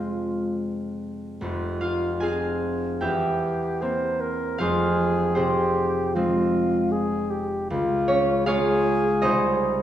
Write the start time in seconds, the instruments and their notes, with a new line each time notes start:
Already playing: harp F2 C3 G#3 C4 F4, alto saxophone F4
1.41 harp F1 F2
1.81 harp F4 F5
2.20 harp C4 F4 G#4 F5 G#5
3.01 harp E2 G4 E5 G5, alto saxophone G4
3.82 harp A#3 C4, alto saxophone C5
4.21 alto saxophone A#4
4.58 harp F1 F2 F4 C5 F5, alto saxophone G#4
5.35 harp C3 C4 G#4 C5, alto saxophone G4
6.15 harp F3 G#3 C4, alto saxophone F4
6.92 alto saxophone G#4
7.31 alto saxophone G4
7.70 harp C#2, alto saxophone F4
8.08 harp C#4 C#5
8.46 harp G#3 C#4 F4 C#5 F5, alto saxophone G#4
9.22 harp C2 D#4 C5 D#5